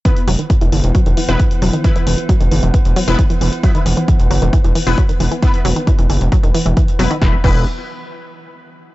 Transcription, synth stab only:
\new Staff \with { instrumentName = "Synth stab" } { \time 4/4 \key c \lydian \tempo 4 = 134 <b e' b'>8 r2 r16 <b e' b'>16 r4 | <b e' b'>8 r2 r16 <b e' b'>16 r4 | <b e' b'>8 r2 r16 <b e' b'>16 r4 | <b e' b'>8 r2. <b e' b'>16 r16 |
<b e' b'>16 r16 <b e' b'>8 r2. | }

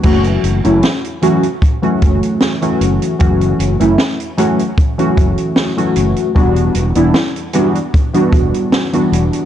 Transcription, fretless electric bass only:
\new Staff \with { instrumentName = "Fretless electric bass" } { \clef bass \time 4/4 \key fis \phrygian \tempo 4 = 76 fis,,8 fis,,16 fis,,16 r4. fis,,16 r8. fis,,16 r16 | fis,,8 fis,,16 fis,,16 r4. fis,,16 r8. fis,,16 r16 | e,,8 e,,16 e,,16 r4. e,,16 r8. e,,16 r16 | }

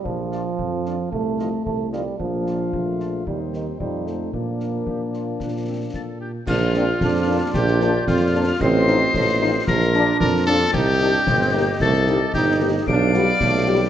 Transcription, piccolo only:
\new Staff \with { instrumentName = "Piccolo" } { \time 2/4 \key bes \major \tempo 4 = 112 r2 | r2 | r2 | r2 |
r2 | r4 a'''8 g'''8 | f'''2 | g'''4 f'''4 |
c''''2 | bes'''4 bes'''8 a'''8 | g'''2 | a'''4 g'''8 r8 |
d''''2 | }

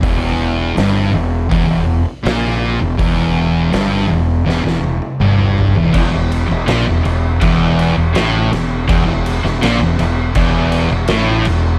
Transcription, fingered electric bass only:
\new Staff \with { instrumentName = "Fingered electric bass" } { \clef bass \time 4/4 \key e \minor \tempo 4 = 81 e,,4 g,,8 e,,8 e,,16 e,,8 r16 ais,,8. e,,16 | e,,4 g,,8 e,,8 e,,16 e,,8 r16 g,,8. e,,16 | e,,16 e,,8 e,,16 ais,,16 e,,16 e,,8 e,,8. e,,16 a,,8 e,,8 | e,,16 e,,8 e,,16 ais,,16 e,,16 e,,8 e,,8. e,,16 a,,8 e,,8 | }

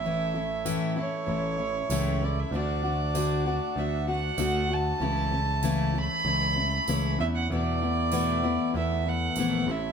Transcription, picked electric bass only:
\new Staff \with { instrumentName = "Picked electric bass" } { \clef bass \time 4/4 \key a \major \tempo 4 = 96 a,,4. r8 a,,4 cis,4 | d,2 d,4 d,4 | cis,2 cis,4 cis,8 e,8 | e,2 e,4 ais,,8 a,,8 | }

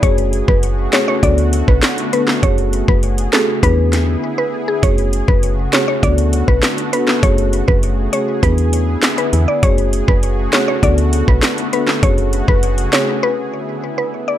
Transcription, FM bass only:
\new Staff \with { instrumentName = "FM bass" } { \clef bass \time 4/4 \key fis \minor \tempo 4 = 100 fis,,8. fis,,8. r8 d,8. b,,16 r4 | fis,,8. fis,,8. r8 e,4 r4 | fis,,8. fis,,8. r8 d,8. b,,16 r4 | fis,,8. fis,,8. r8 e,4 r8 e,16 r16 |
fis,,8. fis,,8. r8 d,8. b,,16 r4 | fis,,8. fis,,8. r2 r8 | }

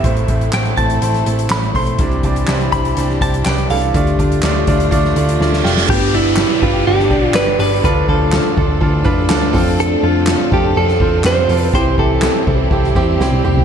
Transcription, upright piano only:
<<
  \new Staff \with { instrumentName = "Upright piano" } { \time 4/4 \key g \mixolydian \tempo 4 = 123 <a c' e' c''>8 <a c' e' c''>8 <a c' e' c''>8 <a c' e' c''>8 <a c' e' c''>8 <a c' e' c''>8 <a c' e' a'>8 <a c' e' c''>8 | <g d' e' c''>8 <g d' e' d''>8 <g d' e' c''>8 <g d' e' c''>8 <g d' e' c''>8 <g d' e' c''>8 <g d' e' b'>8 <g d' e' a'>8 | <a d' f' d''>8 <a d' f' d''>8 <a d' f' d''>8 <a d' f' d''>8 <a d' f' d''>8 <a d' f' d''>8 <a d' f' d''>8 <a d' f' g'>8 | <d' g' b'>8 <d' g' d''>8 <d' g' b'>8 <d' g' b'>8 <d' g' d''>8 <d' g' d''>8 <d' g' d''>8 <d' g' b'>8 |
<d' f' a'>8 <d' f' c''>8 <d' f' a'>8 <d' f' a'>8 <d' f' a'>8 <d' f' b'>8 <d' f' a'>8 <c' f' a'>8~ | <c' f' a'>8 <c' f' a'>8 <c' f' a'>8 <c' f' a'>8 <c' f' g'>8 <c' f' c''>8 <c' f' g'>8 <c' f' a'>8 | <c' e' g'>8 <c' e' g'>8 <c' e' a'>8 <c' e' a'>8 <c' e' g'>8 <c' e' g'>8 <c' e' g'>8 <c' e' g'>8 | }
  \new Staff \with { instrumentName = "Upright piano" } { \clef bass \time 4/4 \key g \mixolydian a,4. r2 r8 | c4. r2 r8 | d4. r2 r8 | g,4. r2 r8 |
d4. r2 r8 | r1 | c4. r2 r8 | }
>>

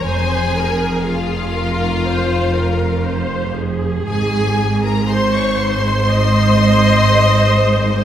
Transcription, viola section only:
\new Staff \with { instrumentName = "Viola section" } { \time 4/4 \key f \minor \tempo 4 = 60 c''8 bes'8 aes'8 bes'8 c''8 bes'8 c''8 aes'8~ | aes'4 c''4 ees''2 | }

